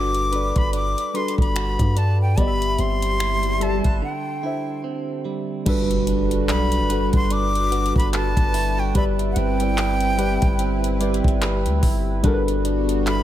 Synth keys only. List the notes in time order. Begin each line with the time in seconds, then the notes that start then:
Already playing: G3 D4 F#4 A4 B4
0.31 G3 D4 F#4 A4
0.35 D5
1.13 G3 D4 F#4 A4
1.17 B4
2.37 G3 B3 G4 D5
2.41 D#5
2.47 E5
3.60 G3 G4 B4 D5
3.64 E5
4.42 D3 D4 G4 C5
4.46 E5
5.65 G3 D4 F#4 A4
5.69 B4
6.89 G3 D4 F#4 A4
6.93 B4
8.94 G3 G4 B4 D5
8.98 E5
9.59 G3 G4 B4 D5
9.64 G5
10.17 G3 G4 B4 D5
10.22 G5
10.99 G3 G4 B4 D5
11.03 G5
12.23 G3 D4 F#4 A4
12.27 A#4
12.34 B4